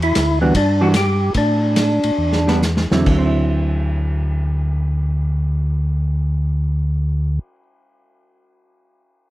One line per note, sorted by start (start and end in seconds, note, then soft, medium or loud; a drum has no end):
0.00 0.13 E2 medium
0.00 0.39 E4 loud
0.00 ride soft
0.15 0.52 D2 medium
0.15 snare medium
0.15 hi-hat pedal medium
0.15 ride medium
0.41 0.53 E3 medium
0.41 0.54 G3 medium
0.41 0.54 B3 medium
0.41 0.54 D4 medium
0.41 0.54 F#4 medium
0.54 1.31 G2 medium
0.54 0.82 D4 medium
0.54 kick soft
0.54 ride medium
0.81 0.93 E3 medium
0.81 0.93 G3 medium
0.81 0.93 D4 medium
0.81 0.94 F#4 medium
0.81 0.89 F#4 medium
0.94 1.33 G4 medium
0.94 snare medium
0.94 hi-hat pedal soft
0.94 ride medium
1.34 2.00 A2 medium
1.34 2.59 D4 medium
1.34 kick soft
1.34 ride medium
1.76 snare medium
1.76 hi-hat pedal medium
1.76 ride medium
2.03 2.11 A2 soft
2.03 ride medium
2.18 2.87 E2 medium
2.33 snare soft
2.47 2.61 G3 medium
2.47 2.61 B3 medium
2.47 2.61 D4 medium
2.47 snare medium
2.62 snare medium
2.62 hi-hat pedal soft
2.77 snare medium
2.91 3.05 E2 medium
2.91 2.99 D3 soft
2.91 3.09 F#3 medium
2.91 3.17 C4 medium
2.91 3.25 E4 medium
2.91 snare medium
3.00 7.37 D3 medium
3.06 7.39 D2 medium
3.06 kick medium
3.06 crash medium
3.10 7.47 F#3 soft
3.18 7.55 C4 medium
3.26 7.63 E4 medium